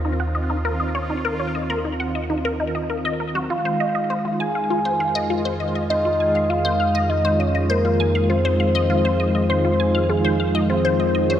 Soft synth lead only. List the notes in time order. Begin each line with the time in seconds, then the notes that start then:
3.50 F5
4.40 G#5
5.90 D#5
6.49 F5
7.09 D#5
7.39 C#5
7.70 A#4
8.29 C5
9.49 C5
10.09 G#4
10.69 C5
11.30 C#5